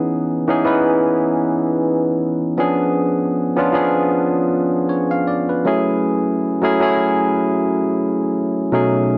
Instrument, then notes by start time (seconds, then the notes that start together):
tine electric piano
Already playing: E3 B3 C#4 D#4 G#4
0.47 E3 B3 C#4 D#4 G#4
0.64 E3 B3 C#4 D#4 B4
2.57 F3 B3 C#4 D4 G#4
3.56 F3 B3 C#4 D4 F4
3.72 F3 B3 C#4 D4 G#4
4.89 C#5
5.11 F5
5.27 D5
5.49 B4
5.65 F#3 A3 C#4 E4 G#4
6.62 F#3 A3 C#4 E4 G#4
6.80 F#3 A3 C#4 E4 G#4
8.72 B2 F#3 A3 C#4 D#4 G#4